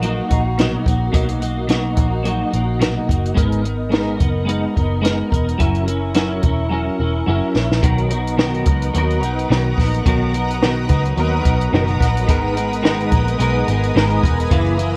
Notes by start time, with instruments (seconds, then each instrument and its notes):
Already playing: picked electric bass A#1
0.02 clean electric guitar F#3 A#3 D#4 F#4, closed hi-hat
0.29 picked electric bass A#1, clean electric guitar A#3 D#4 F#4, kick, closed hi-hat
0.58 clean electric guitar B2 F#3 A#3 D#4 F#4, snare, closed hi-hat
0.84 picked electric bass A#1, clean electric guitar D#4 F#4, kick, closed hi-hat
0.88 clean electric guitar A#3
1.12 picked electric bass B1, clean electric guitar B2 F#3 A#3 D#4 F#4, kick, closed hi-hat
1.29 closed hi-hat
1.40 clean electric guitar D#4 F#4, closed hi-hat
1.45 clean electric guitar A#3
1.68 clean electric guitar B2 F#3 A#3 D#4 F#4, snare, closed hi-hat
1.96 picked electric bass A#1, clean electric guitar D#4 F#4, kick, closed hi-hat
2.00 clean electric guitar A#3
2.23 clean electric guitar F#3 A#3 D#4 F#4, closed hi-hat
2.51 picked electric bass A#1, clean electric guitar D#4 F#4, closed hi-hat
2.55 clean electric guitar A#3
2.79 clean electric guitar B2 F#3 A#3 D#4 F#4, snare, closed hi-hat
3.06 picked electric bass F#1, clean electric guitar D#4 F#4, kick
3.11 clean electric guitar A#3, closed hi-hat
3.26 closed hi-hat
3.34 picked electric bass G#1, clean electric guitar G#3 B3 D#4 A#4, kick, closed hi-hat
3.52 closed hi-hat
3.62 clean electric guitar B3 D#4 A#4, closed hi-hat
3.90 clean electric guitar G#3 B3 D#4 A#4, closed hi-hat
3.94 snare
4.17 picked electric bass F#1, clean electric guitar D#4 A#4, kick, closed hi-hat
4.22 clean electric guitar B3
4.45 clean electric guitar G#3 B3 D#4 A#4, closed hi-hat
4.74 picked electric bass F#1, clean electric guitar D#4 A#4, kick, closed hi-hat
4.78 clean electric guitar B3
5.02 clean electric guitar G#3 B3 D#4 A#4, closed hi-hat
5.06 snare
5.31 picked electric bass E1, clean electric guitar D#4 A#4, kick, closed hi-hat
5.35 clean electric guitar B3
5.49 closed hi-hat
5.58 picked electric bass F#1, clean electric guitar F#3 C#4 E4 A#4, kick, closed hi-hat
5.75 closed hi-hat
5.86 clean electric guitar C#4 E4 A#4, closed hi-hat
6.15 clean electric guitar F#3 C#4 E4 A#4, snare, closed hi-hat
6.42 picked electric bass E1, clean electric guitar E4 A#4, kick, closed hi-hat
6.46 clean electric guitar C#4
6.69 clean electric guitar F#3 C#4 E4 A#4
6.99 picked electric bass E1, clean electric guitar E4 A#4
7.03 clean electric guitar C#4
7.26 picked electric bass F#1, clean electric guitar F#3 C#4 E4 A#4
7.55 picked electric bass A#1, clean electric guitar C#4 E4 A#4, snare
7.71 picked electric bass A#1, snare
7.82 picked electric bass B1, clean electric guitar B2 D#3 F#3 B3 D#4 A#4, ambient pad B4 F#5 A#5 D#6, kick, closed hi-hat
7.98 closed hi-hat
8.09 clean electric guitar B3 D#4 A#4, closed hi-hat
8.14 clean electric guitar F#3
8.27 closed hi-hat
8.37 clean electric guitar B2 D#3 F#3 B3 D#4 A#4, snare
8.54 closed hi-hat
8.64 picked electric bass C#2, clean electric guitar B3 D#4 A#4, kick, closed hi-hat
8.69 clean electric guitar F#3
8.82 closed hi-hat
8.93 picked electric bass D#2, clean electric guitar F#3 B3 D#4, closed hi-hat
8.98 clean electric guitar A#4
9.10 closed hi-hat
9.22 picked electric bass B1, clean electric guitar B3 D#4 A#4, closed hi-hat
9.26 clean electric guitar F#3
9.39 closed hi-hat
9.49 picked electric bass B1, clean electric guitar B2 D#3 F#3 B3 D#4 A#4, snare
9.78 picked electric bass A#1, clean electric guitar F#3 B3 D#4 A#4, kick, snare, open hi-hat
9.95 closed hi-hat
10.05 picked electric bass B1, clean electric guitar B2 D#3 F#3 B3 D#4 A#4, kick, closed hi-hat
10.34 clean electric guitar B3 D#4 A#4, closed hi-hat
10.38 clean electric guitar F#3
10.50 closed hi-hat
10.62 clean electric guitar B2 D#3 F#3 B3 D#4 A#4, snare
10.89 picked electric bass C#2, clean electric guitar B3 D#4 A#4, kick, closed hi-hat
10.93 clean electric guitar F#3
11.05 closed hi-hat
11.16 picked electric bass D#2, clean electric guitar F#3 B3 D#4 A#4, closed hi-hat
11.43 picked electric bass B1, clean electric guitar F#3 B3 D#4 A#4, kick, closed hi-hat
11.61 closed hi-hat
11.73 picked electric bass F#1, clean electric guitar B2 D#3 F#3 B3 D#4 A#4, snare
11.88 closed hi-hat
12.00 picked electric bass A#1, clean electric guitar F#3 B3 D#4 A#4, kick, snare, closed hi-hat
12.17 closed hi-hat
12.27 picked electric bass G#1, clean electric guitar G#2 D#3 G#3 B3 D#4 A#4, ambient pad G#5 A#5 D#6, kick, closed hi-hat
12.54 clean electric guitar B3 D#4 A#4, closed hi-hat
12.58 clean electric guitar G#3
12.73 closed hi-hat
12.82 clean electric guitar G#2 D#3 G#3 B3 D#4 A#4, snare
13.00 closed hi-hat
13.10 picked electric bass A#1, clean electric guitar B3 D#4 A#4, kick, closed hi-hat
13.14 clean electric guitar G#3
13.28 closed hi-hat
13.38 picked electric bass B1, clean electric guitar G#3 B3 D#4 A#4, closed hi-hat
13.67 picked electric bass G#1, clean electric guitar G#3 B3 D#4 A#4, closed hi-hat
13.83 closed hi-hat
13.95 picked electric bass G#1, clean electric guitar G#2 D#3 G#3 B3 D#4 A#4, snare
14.10 closed hi-hat
14.23 picked electric bass E1, clean electric guitar B3 D#4 A#4, kick, closed hi-hat
14.27 clean electric guitar G#3
14.40 closed hi-hat
14.50 picked electric bass F#1, clean electric guitar F#2 C#3 E3 A#3 E4, kick, closed hi-hat
14.77 clean electric guitar A#3 E4, closed hi-hat
14.82 clean electric guitar E3